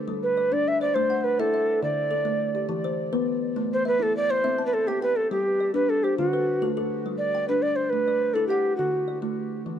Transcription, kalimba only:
0.00 0.22 A4 medium
0.08 0.37 G3 medium
0.37 0.80 D5 medium
0.52 0.80 D4 medium
0.81 0.94 C5 medium
0.96 1.24 A3 medium
0.96 1.39 C5 medium
1.10 1.53 F#5 medium
1.39 1.68 E4 medium
1.39 1.52 E5 medium
1.54 1.97 E5 medium
1.83 2.11 D3 medium
2.11 2.54 A4 medium
2.25 2.54 A3 medium
2.55 2.67 G4 medium
2.69 2.98 E3 medium
2.69 3.12 G4 medium
2.84 3.27 C5 medium
3.13 3.42 B3 medium
3.13 3.56 B4 medium
3.56 3.85 A3 medium
3.85 4.29 E5 medium
4.00 4.29 E4 medium
4.29 4.58 D5 medium
4.44 4.73 C4 medium
4.44 4.87 E5 medium
4.58 5.02 A5 medium
4.88 5.16 G4 medium
4.88 5.01 G5 medium
5.02 5.45 G5 medium
5.31 5.60 G3 medium
5.60 6.03 D5 medium
5.74 6.03 D4 medium
6.04 6.33 C5 medium
6.18 6.47 D3 medium
6.18 6.61 F#4 medium
6.33 6.76 B4 medium
6.62 6.91 A3 medium
6.62 6.76 A4 medium
6.77 7.20 A4 medium
7.06 7.34 G3 medium
7.35 7.78 G5 medium
7.49 7.78 D4 medium
7.93 8.21 A3 medium
8.08 8.51 D5 medium
8.35 8.65 E4 medium
8.35 8.79 A4 medium
8.50 8.94 F#5 medium
8.79 9.08 D3 medium
9.08 9.52 D5 medium
9.22 9.52 A3 medium
9.66 9.79 E3 medium

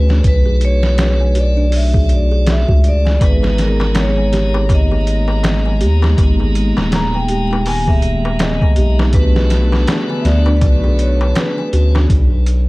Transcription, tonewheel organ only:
0.00 0.22 A3 medium
0.00 0.20 C#4 medium
0.00 0.21 D4 medium
0.00 0.21 F#4 medium
0.21 1.69 D4 medium
0.21 1.67 B4 medium
0.26 1.71 A3 loud
0.26 1.70 F#4 medium
1.69 2.80 D4 medium
1.69 2.79 D5 medium
1.75 2.83 A3 medium
1.75 2.82 F#4 medium
2.83 3.18 A3 medium
2.83 3.17 D4 medium
2.83 3.18 F#4 medium
3.17 4.63 G#3 medium
3.17 4.65 B3 medium
3.23 4.66 D#4 medium
3.23 4.68 G#4 loud
4.66 5.76 A#3 medium
4.66 5.77 B3 medium
4.72 5.80 G#3 medium
4.72 5.79 D#4 medium
5.79 6.13 A#3 medium
5.79 6.14 B3 medium
5.79 6.15 D#4 medium
5.84 6.15 G#3 medium
6.14 7.60 A#3 loud
6.14 7.62 B3 medium
6.20 7.65 G#3 loud
6.20 7.63 D#4 medium
7.63 8.72 A#3 medium
7.63 8.74 B3 medium
7.68 8.75 D#3 medium
7.68 8.76 G#3 medium
8.76 9.10 A#3 medium
8.76 9.10 B3 medium
8.76 9.11 D#4 medium
8.80 9.12 G#3 medium
9.11 10.57 B3 medium
9.11 10.58 D4 medium
9.16 10.61 A3 loud
9.16 10.60 F#4 medium
10.58 11.70 D4 medium
10.58 11.68 B4 medium
10.64 11.72 A3 medium
10.64 11.71 F#4 medium
11.72 12.08 A3 medium
11.72 12.06 C#4 medium
11.72 12.06 D4 medium
11.72 12.07 F#4 medium

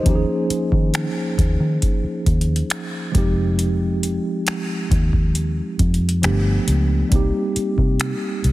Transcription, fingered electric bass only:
0.06 0.23 D#2 medium
0.50 muted fingered electric bass stroke soft
0.72 1.06 D#3 loud
1.38 1.55 D#2 medium
1.60 1.77 D#3 medium
2.04 muted fingered electric bass stroke soft
2.26 2.61 D#2 medium
3.15 4.17 F1 medium
4.91 5.59 D#2 medium
5.79 6.25 F2 medium
6.23 6.58 G1 medium
6.68 7.02 C#2 medium
7.12 7.29 C2 loud
7.56 muted fingered electric bass stroke soft
7.78 8.12 C3 medium
8.44 8.52 C2 medium

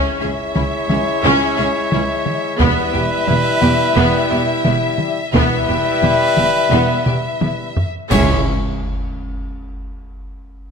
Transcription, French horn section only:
0.00 2.56 G#3 medium
0.00 2.55 E4 loud
2.61 5.18 G3 loud
2.61 5.18 E4 loud
5.35 7.76 G3 loud
5.35 7.76 E4 loud
8.12 8.42 G#3 loud
8.12 8.42 E4 loud

